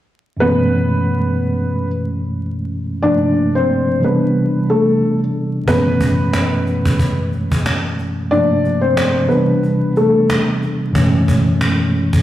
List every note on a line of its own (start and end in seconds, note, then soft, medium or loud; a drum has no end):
0.37 2.98 F#2 medium
0.37 2.99 B2 medium
0.37 3.00 E3 medium
0.37 1.87 B4 medium
0.41 3.00 G#3 medium
0.41 3.01 A3 medium
0.41 1.87 B3 medium
0.41 3.02 C#4 medium
3.02 4.02 G2 medium
3.02 3.98 C3 medium
3.02 4.03 F3 medium
3.02 4.03 A3 medium
3.02 4.04 A#3 medium
3.02 3.52 D4 medium
3.02 3.52 D5 medium
3.07 4.04 D4 medium
3.55 4.00 C4 medium
3.55 4.00 C5 medium
3.99 5.62 C3 medium
3.99 5.63 E3 medium
3.99 5.64 G3 medium
4.04 5.65 B3 medium
4.04 4.66 B3 medium
4.04 5.66 D4 medium
4.04 4.66 B4 medium
4.70 5.18 A3 medium
4.70 5.18 A4 medium
5.64 8.26 F#2 medium
5.64 8.26 B2 medium
5.64 8.27 E3 medium
5.64 7.14 B4 loud
5.64 cajon bass loud
5.68 8.28 G#3 medium
5.68 8.28 A3 medium
5.68 7.15 B3 medium
5.68 8.29 C#4 medium
6.01 cajon bass medium
6.33 cajon slap loud
6.67 cajon slap soft
6.85 cajon bass loud
6.99 cajon bass loud
7.32 cajon slap soft
7.52 cajon bass loud
7.66 cajon slap loud
7.99 cajon slap soft
8.31 9.30 G2 medium
8.31 9.25 C3 medium
8.31 9.31 F3 medium
8.31 9.31 A3 medium
8.31 9.31 A#3 medium
8.31 8.80 D4 medium
8.31 9.32 D4 medium
8.31 8.80 D5 loud
8.31 cajon slap soft
8.65 cajon slap soft
8.81 9.27 C4 medium
8.81 9.27 C5 medium
8.97 cajon slap loud
9.26 10.90 C3 medium
9.26 10.91 E3 medium
9.26 10.92 G3 medium
9.26 9.92 B3 medium
9.26 9.91 B4 medium
9.30 10.93 B3 medium
9.30 10.93 D4 medium
9.30 cajon slap soft
9.63 cajon slap medium
9.96 10.46 A3 medium
9.96 10.45 A4 medium
9.96 cajon slap soft
10.30 cajon slap loud
10.63 cajon slap soft
10.91 12.22 F#2 medium
10.91 12.22 B2 medium
10.91 12.22 E3 medium
10.95 12.22 G#3 medium
10.95 12.22 A3 medium
10.95 12.22 C#4 medium
10.95 cajon bass loud
11.28 cajon bass medium
11.61 cajon slap loud
12.13 cajon bass loud